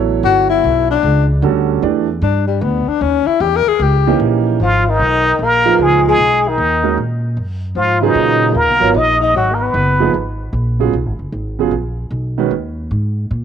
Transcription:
Already playing: upright bass A1, grand piano F#3 B3 E4 A4 C#5
0.23 upright bass G1, tenor saxophone F#4
0.50 tenor saxophone E4
0.64 upright bass B1
0.91 tenor saxophone D4
1.03 upright bass C#2
1.42 upright bass D2, grand piano D3 G3 C#4 F#4 A4
1.82 upright bass E2, grand piano E3 A3 D4 G4 D5
2.22 upright bass G2, tenor saxophone D4
2.47 tenor saxophone G3
2.61 upright bass D2, tenor saxophone B3
2.87 tenor saxophone D4, muted upright bass stroke
3.01 upright bass D#2, tenor saxophone C#4
3.27 tenor saxophone E4, muted upright bass stroke
3.40 upright bass E2, tenor saxophone G4
3.56 tenor saxophone A#4
3.67 tenor saxophone G#4, muted upright bass stroke
3.79 upright bass C#2, tenor saxophone G4
4.07 grand piano E3 A#3 C#4 D#4 G4
4.20 upright bass A#1
4.60 upright bass G#1, tenor saxophone F3, muted trumpet F4
4.88 tenor saxophone D#3, muted trumpet D#4
4.99 upright bass B1
5.39 upright bass A#1, tenor saxophone A#3
5.44 muted trumpet A#4
5.66 grand piano A#2 F3 D#4 G#4 B4
5.78 upright bass C#2, tenor saxophone G#3
5.83 muted trumpet G#4
6.08 tenor saxophone G#3, muted trumpet G#4
6.18 upright bass B1
6.48 tenor saxophone D#3, muted trumpet D#4
6.58 upright bass D#2
6.84 grand piano D#3 G#3 C#4 F#4 A#4
6.97 upright bass A#2
7.37 upright bass F#2
7.75 upright bass G#2, tenor saxophone F3, muted trumpet F4
8.01 grand piano C#3 F#3 F4 G#4 B4, tenor saxophone D#3, muted trumpet D#4
8.15 upright bass A#2
8.54 upright bass D#2, tenor saxophone A#3, muted trumpet A#4
8.68 upright bass B1
8.80 upright bass G#1, grand piano F#3 B3 F4 A#4 C#5
8.94 upright bass A#1, tenor saxophone D#4, muted trumpet D#5
9.20 tenor saxophone D#4, muted trumpet D#5
9.34 upright bass G#1, tenor saxophone F#3, muted trumpet F#4
9.51 tenor saxophone A#3, muted trumpet A#4
9.61 tenor saxophone B3, muted trumpet B4
9.74 upright bass F#1
10.00 grand piano F3 A#3 D#4 G#4 B4
10.14 upright bass G#1
10.53 upright bass A#1
10.79 grand piano C#3 F#3 B3 F4 G#4
10.93 upright bass B1
11.06 upright bass G#1
11.19 upright bass F#1
11.32 upright bass G#1
11.59 grand piano C#3 F#3 B3 F4 G#4
11.71 upright bass A#1
12.11 upright bass B1
12.38 grand piano D#3 G#3 C#4 F#4 B4
12.51 upright bass D#2
12.91 upright bass G#2
13.31 upright bass A#2

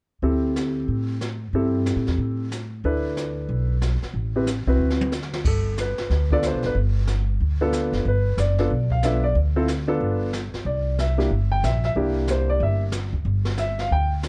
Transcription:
0.22 upright bass D2, grand piano C4 E4 G4 A4, brush sweep
0.56 snare, hi-hat pedal
0.88 upright bass A2, brush sweep
1.21 snare, hi-hat pedal
1.53 upright bass G2, grand piano C4 E4 G4 A4, brush sweep
1.86 snare, hi-hat pedal
1.96 upright bass A2
2.07 upright bass E2, snare
2.18 upright bass A2, brush sweep
2.51 snare, hi-hat pedal
2.84 upright bass D2, grand piano D4 E4 A4 B4, brush sweep
3.17 snare, hi-hat pedal
3.49 upright bass B1, brush sweep
3.82 snare, hi-hat pedal
4.02 muted upright bass stroke, snare
4.14 upright bass A1, brush sweep
4.36 grand piano C4 E4 G4 B4
4.47 snare, hi-hat pedal
4.67 upright bass C2, grand piano C4 E4 F#4 B4
4.79 upright bass D2
4.90 snare
5.01 high tom
5.12 snare, hi-hat pedal
5.22 snare
5.33 snare
5.45 upright bass G1, grand piano A4, brush sweep, kick, crash
5.77 grand piano B4, snare, hi-hat pedal
5.98 muted upright bass stroke, snare
6.10 upright bass D2, brush sweep, snare
6.30 grand piano B3 D4 F4 A4 D5, kick
6.43 snare, hi-hat pedal
6.47 grand piano C5
6.54 upright bass B1
6.63 upright bass F#1, grand piano B4, snare
6.75 upright bass G1, brush sweep
7.07 snare, hi-hat pedal
7.40 upright bass D2, brush sweep
7.61 grand piano B3 D4 F4 A4
7.73 snare, hi-hat pedal
7.92 upright bass F#1, snare
8.05 upright bass G1, grand piano B4, brush sweep
8.37 upright bass F#1, grand piano D5, snare, hi-hat pedal
8.58 grand piano B3 D4 F4 A4, snare
8.70 upright bass B1, brush sweep
8.90 grand piano F5, kick
9.03 grand piano B3 D4 F4 A4 E5, snare, hi-hat pedal
9.24 grand piano D5
9.35 upright bass D2, brush sweep
9.56 grand piano C4 E4 F4 A4
9.68 snare, hi-hat pedal
9.88 grand piano B3 D4 F4 A4
10.00 upright bass G1, brush sweep
10.33 snare, hi-hat pedal
10.54 muted upright bass stroke, snare
10.65 upright bass C2, grand piano D5, brush sweep
10.99 grand piano E5, snare, hi-hat pedal
11.18 grand piano A#3 D4 E4 G4, snare
11.30 upright bass G1, brush sweep
11.52 grand piano G5
11.63 upright bass A#1, grand piano E5, snare, hi-hat pedal
11.84 grand piano E5, snare
11.96 upright bass C2, grand piano A#3 D4 E4 G4, brush sweep
12.28 grand piano C5, snare, hi-hat pedal
12.50 grand piano D5
12.60 upright bass G1, grand piano E5, brush sweep
12.92 snare, hi-hat pedal
13.13 upright bass D2
13.24 upright bass G1, brush sweep
13.45 snare
13.57 grand piano E5, snare, hi-hat pedal
13.79 grand piano F5, snare
13.91 upright bass D2, grand piano G5, brush sweep
14.23 snare, hi-hat pedal

